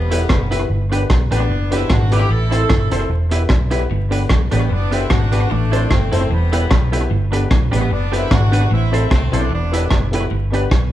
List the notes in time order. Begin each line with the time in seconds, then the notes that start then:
Already playing: E1 G3 B3
0.11 B3 E4 G4 B4, closed hi-hat
0.29 F#1, kick, cross-stick
0.51 B3 E4 G4 B4, closed hi-hat
0.70 G1
0.91 B3 D4 G4 B4, closed hi-hat
1.10 B1, kick, cross-stick
1.31 A1 B3 D4 G4 B4, closed hi-hat
1.49 F#1, muted clean electric guitar stroke
1.71 B3 C4 D4 E4 G4 B4, closed hi-hat
1.90 G#1 D4 F#4, kick, cross-stick
2.11 B3 D4 E4 G4 B4, closed hi-hat
2.29 A1 E4 A4
2.51 C4 E4 A4 C5, closed hi-hat
2.69 G1, kick, cross-stick
2.90 F#1 C4 E4 A4 C5, closed hi-hat
3.09 E1, muted clean electric guitar stroke
3.31 B3 E4 G4 B4, closed hi-hat
3.49 B1, kick, cross-stick
3.71 B3 E4 G4 B4, closed hi-hat
3.91 G1 G2
4.11 B3 D4 G4 B4, closed hi-hat
4.29 B1 B2, kick, cross-stick
4.51 A1 A2 G3 B3 D4 G4 B4, closed hi-hat
4.69 F#1 F#2 B3 D4, muted clean electric guitar stroke
4.91 B3 C4 D4 E4 G4 B4, closed hi-hat
5.10 G#1 G#2 D4 F#4, kick, cross-stick
5.32 B3 D4 G4 B4, closed hi-hat
5.51 A1 A2 A3 D4
5.72 C4 E4 A4 C5, closed hi-hat
5.90 G1 G2 A3 C4, kick, cross-stick
6.12 F#1 F#2 A3 C4 E4 A4 C5, closed hi-hat
6.30 E1 E2 G3 B3, muted clean electric guitar stroke
6.52 B3 E4 G4 B4, closed hi-hat
6.71 B1 B2, kick, cross-stick
6.92 B3 E4 G4 B4, closed hi-hat
7.11 G1 G2
7.32 B3 D4 G4 B4, closed hi-hat
7.51 B1 B2, kick, cross-stick
7.71 A1 A2 G3 B3 D4 G4 B4, closed hi-hat
7.90 F#1 F#2 B3 D4, muted clean electric guitar stroke
8.12 B3 C4 D4 E4 G4 B4, closed hi-hat
8.31 G#1 G#2 D4 F#4, kick, cross-stick
8.51 B3 D4 G4 B4, closed hi-hat
8.71 A1 A2 C4 E4
8.92 C4 E4 A4 C5, closed hi-hat
9.10 C2 C3 A3 C4, kick, cross-stick
9.32 B1 B2 B3 C4 E4 A4 C5, closed hi-hat
9.36 D4
9.50 E1 E2 B3 D4, muted clean electric guitar stroke
9.72 B3 E4 G4 B4, closed hi-hat
9.90 F#1 F#2, kick, cross-stick
10.12 B3 E4 G4 B4, closed hi-hat
10.31 G1 G2
10.52 B3 D4 G4 B4, closed hi-hat
10.71 B1 B2, kick, cross-stick